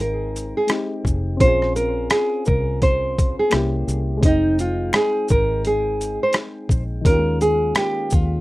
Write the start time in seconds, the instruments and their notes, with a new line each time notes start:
Already playing: fingered electric bass G#1, synth keys G#3 C4 D#4 G5
0.00 nylon-string guitar A#4, closed hi-hat
0.36 closed hi-hat, shaker
0.57 nylon-string guitar G#4
0.67 synth keys G#3 C4 D#4, finger snap, cross-stick, closed hi-hat
0.73 synth keys G4
1.05 fingered electric bass F1, kick, shaker
1.37 fingered electric bass A#1, synth keys C4 C#4, nylon-string guitar C5, kick, closed hi-hat
1.44 synth keys F4 G#4
1.62 cross-stick
1.76 nylon-string guitar A#4, closed hi-hat, shaker
2.10 nylon-string guitar G#4, finger snap, cross-stick, closed hi-hat
2.45 fingered electric bass C2, nylon-string guitar A#4, kick, shaker
2.82 nylon-string guitar C5, kick, closed hi-hat
3.19 kick, closed hi-hat, shaker
3.39 nylon-string guitar G#4
3.50 fingered electric bass C2, synth keys A#3 C#4 E4, finger snap, cross-stick, closed hi-hat
3.55 synth keys G4
3.88 fingered electric bass C2, shaker
4.17 synth keys G#3 C4
4.23 fingered electric bass F1, synth keys D#4, nylon-string guitar D#4, kick, closed hi-hat
4.28 synth keys G5
4.59 nylon-string guitar F4, closed hi-hat, shaker
4.93 nylon-string guitar G#4, finger snap, cross-stick, closed hi-hat
5.28 fingered electric bass G#1, nylon-string guitar A#4, kick, shaker
5.65 nylon-string guitar G#4, closed hi-hat
6.01 closed hi-hat, shaker
6.23 nylon-string guitar C5
6.33 finger snap, cross-stick, closed hi-hat
6.69 fingered electric bass A#1, kick, shaker
7.01 fingered electric bass D#2, synth keys D#3 A#3, kick
7.06 synth keys C#4 F4, nylon-string guitar A#4, closed hi-hat
7.12 synth keys G4
7.19 synth keys G#3
7.41 nylon-string guitar G#4, closed hi-hat, shaker
7.75 nylon-string guitar G4, finger snap, cross-stick, closed hi-hat
8.10 fingered electric bass D#2, nylon-string guitar F4, kick, shaker